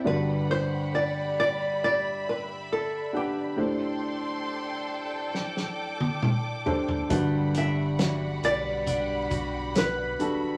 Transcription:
0.04 1.33 G2 medium
0.04 1.33 D3 medium
0.04 3.54 G3 medium
0.04 1.72 D4 medium
0.04 1.72 F#4 medium
0.04 1.72 G4 medium
0.04 0.50 B4 medium
0.04 7.07 D5 medium
0.04 1.73 D5 medium
0.04 1.79 F#5 medium
0.04 3.54 B5 medium
0.51 0.91 C5 medium
0.95 1.35 D5 loud
1.40 1.79 D5 loud
1.81 2.28 D5 loud
1.81 3.56 E5 medium
2.29 2.41 B4 medium
2.72 3.12 A4 medium
3.13 3.55 D4 medium
3.13 3.55 G4 medium
3.13 4.87 G4 medium
3.13 3.56 B4 medium
3.13 3.55 F#5 medium
3.57 4.86 A2 medium
3.57 5.25 D4 medium
3.57 5.25 G4 medium
3.57 5.25 A4 medium
3.57 7.07 A4 medium
3.57 5.25 C5 medium
3.57 7.07 G5 medium
3.57 5.32 C6 medium
5.35 7.09 D6 medium
5.35 snare medium
5.57 snare soft
6.00 high tom medium
6.22 mid tom medium
6.66 7.08 D4 medium
6.66 7.08 G4 medium
6.66 7.08 A4 medium
6.66 7.09 C5 medium
6.66 floor tom medium
6.89 floor tom medium
7.10 8.39 G1 loud
7.10 8.39 G2 medium
7.10 8.39 D3 medium
7.10 10.57 G3 medium
7.10 8.78 D4 medium
7.10 8.78 F#4 medium
7.10 8.78 G4 medium
7.10 8.78 B4 medium
7.10 10.57 D5 medium
7.10 10.57 F#5 medium
7.10 10.57 B5 medium
7.10 kick loud
7.10 closed hi-hat medium
7.54 8.85 D4 medium
7.54 8.44 E5 medium
7.54 closed hi-hat medium
7.99 9.29 F#4 medium
7.99 snare loud
7.99 closed hi-hat medium
8.43 9.27 B1 medium
8.43 9.75 B4 medium
8.43 9.72 D5 loud
8.43 closed hi-hat medium
8.86 10.57 D4 medium
8.86 kick medium
8.86 closed hi-hat medium
9.30 10.15 B1 medium
9.30 10.18 F#4 medium
9.30 kick medium
9.30 closed hi-hat medium
9.75 10.57 B4 medium
9.75 snare medium
9.75 closed hi-hat medium
10.19 10.57 D1 medium
10.19 10.57 D4 medium
10.19 10.57 F#4 medium
10.19 10.57 G4 medium
10.19 10.57 A4 medium
10.19 closed hi-hat medium

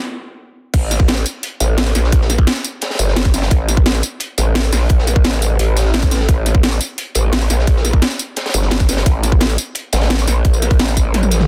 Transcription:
0.74 1.24 A1 medium
0.74 kick loud
0.74 closed hi-hat loud
0.74 closed hi-hat medium
0.74 crash loud
0.91 snare soft
0.91 closed hi-hat medium
0.91 tambourine medium
1.00 kick loud
1.08 snare loud
1.08 closed hi-hat loud
1.08 closed hi-hat medium
1.17 tambourine soft
1.26 closed hi-hat medium
1.26 tambourine medium
1.43 closed hi-hat loud
1.60 1.94 A1 loud
1.60 closed hi-hat medium
1.60 tambourine medium
1.78 snare loud
1.78 closed hi-hat loud
1.78 open hi-hat medium
1.86 tambourine soft
1.95 2.46 A#1 loud
1.95 snare medium
1.95 closed hi-hat medium
1.95 tambourine medium
2.04 snare soft
2.12 kick loud
2.12 closed hi-hat medium
2.12 closed hi-hat loud
2.21 snare soft
2.29 snare soft
2.29 closed hi-hat medium
2.29 tambourine medium
2.38 kick loud
2.47 snare loud
2.47 closed hi-hat medium
2.56 snare medium
2.56 tambourine soft
2.64 closed hi-hat medium
2.64 tambourine medium
2.81 snare loud
2.81 closed hi-hat medium
2.90 snare medium
2.90 closed hi-hat medium
2.95 snare loud
2.95 closed hi-hat medium
2.99 3.32 G1 loud
2.99 snare soft
2.99 closed hi-hat medium
2.99 tambourine medium
3.08 snare soft
3.16 snare loud
3.16 closed hi-hat medium
3.25 kick loud
3.25 tambourine soft
3.34 3.50 G1 loud
3.34 snare soft
3.34 closed hi-hat medium
3.34 tambourine medium
3.42 snare loud
3.42 closed hi-hat medium
3.50 4.02 A1 loud
3.50 kick loud
3.50 closed hi-hat medium
3.69 snare soft
3.69 closed hi-hat medium
3.69 tambourine medium
3.77 kick loud
3.86 snare loud
3.86 closed hi-hat medium
3.95 tambourine soft
4.02 closed hi-hat medium
4.02 tambourine medium
4.20 closed hi-hat loud
4.20 closed hi-hat medium
4.38 4.71 A1 loud
4.38 closed hi-hat medium
4.38 tambourine medium
4.55 snare loud
4.55 closed hi-hat medium
4.64 tambourine soft
4.72 5.23 A#1 loud
4.72 snare loud
4.72 snare medium
4.72 closed hi-hat medium
4.72 open hi-hat medium
4.72 tambourine medium
4.89 kick loud
4.89 closed hi-hat loud
4.89 closed hi-hat medium
4.99 snare soft
5.07 snare soft
5.07 closed hi-hat medium
5.07 tambourine medium
5.16 kick loud
5.24 5.58 A1 loud
5.24 snare loud
5.24 closed hi-hat medium
5.33 snare medium
5.33 tambourine soft
5.42 closed hi-hat medium
5.42 tambourine medium
5.59 6.27 A1 loud
5.59 closed hi-hat medium
5.76 snare loud
5.76 closed hi-hat medium
5.76 tambourine medium
5.85 snare medium
5.94 snare loud
5.94 closed hi-hat medium
6.03 kick loud
6.03 tambourine soft
6.11 snare soft
6.11 closed hi-hat medium
6.11 tambourine medium
6.20 snare soft
6.29 6.79 A1 medium
6.29 kick loud
6.29 closed hi-hat medium
6.46 snare soft
6.46 closed hi-hat medium
6.46 tambourine medium
6.55 kick loud
6.63 snare loud
6.63 closed hi-hat medium
6.72 tambourine soft
6.81 closed hi-hat medium
6.81 tambourine medium
6.98 closed hi-hat medium
7.15 7.49 A1 loud
7.15 closed hi-hat medium
7.15 tambourine medium
7.33 snare loud
7.33 closed hi-hat medium
7.33 open hi-hat medium
7.41 tambourine soft
7.49 8.01 A#1 loud
7.49 snare soft
7.49 closed hi-hat medium
7.49 tambourine medium
7.59 snare soft
7.67 kick loud
7.67 closed hi-hat medium
7.76 snare soft
7.85 snare soft
7.85 closed hi-hat medium
7.85 tambourine medium
7.93 kick loud
8.02 snare loud
8.02 closed hi-hat medium
8.10 snare medium
8.10 tambourine soft
8.19 closed hi-hat medium
8.19 tambourine medium
8.36 snare loud
8.36 closed hi-hat medium
8.46 snare loud
8.46 closed hi-hat medium
8.49 snare medium
8.49 closed hi-hat medium
8.53 8.87 G1 loud
8.53 snare soft
8.53 closed hi-hat medium
8.53 tambourine medium
8.62 snare medium
8.71 snare loud
8.71 closed hi-hat loud
8.71 closed hi-hat medium
8.80 kick loud
8.80 tambourine soft
8.88 9.05 G1 loud
8.88 snare soft
8.88 closed hi-hat medium
8.88 tambourine medium
8.97 snare loud
8.97 closed hi-hat medium
9.06 9.57 A1 loud
9.06 kick loud
9.06 closed hi-hat medium
9.06 closed hi-hat loud
9.23 snare soft
9.23 closed hi-hat medium
9.23 tambourine medium
9.32 kick loud
9.40 snare loud
9.40 closed hi-hat medium
9.49 tambourine soft
9.58 closed hi-hat medium
9.58 tambourine medium
9.75 closed hi-hat medium
9.93 10.26 A1 loud
9.93 snare loud
9.93 closed hi-hat medium
9.93 tambourine medium
10.01 snare loud
10.01 closed hi-hat medium
10.10 snare loud
10.10 closed hi-hat medium
10.19 snare loud
10.19 closed hi-hat medium
10.19 tambourine soft
10.27 10.78 A#1 loud
10.27 snare soft
10.27 closed hi-hat medium
10.27 tambourine medium
10.45 kick loud
10.45 closed hi-hat loud
10.45 closed hi-hat medium
10.53 tambourine soft
10.62 snare soft
10.62 closed hi-hat medium
10.62 tambourine medium
10.70 kick loud
10.70 closed hi-hat medium
10.79 11.47 A1 loud
10.79 snare loud
10.79 closed hi-hat loud
10.79 closed hi-hat medium
10.88 snare medium
10.88 tambourine soft
10.97 kick medium
10.97 closed hi-hat medium
10.97 tambourine medium
11.14 snare medium
11.14 closed hi-hat loud
11.14 closed hi-hat medium
11.14 high tom medium
11.23 high tom medium
11.23 tambourine soft
11.31 snare soft
11.31 closed hi-hat medium
11.31 tambourine medium
11.40 snare medium
11.40 mid tom medium

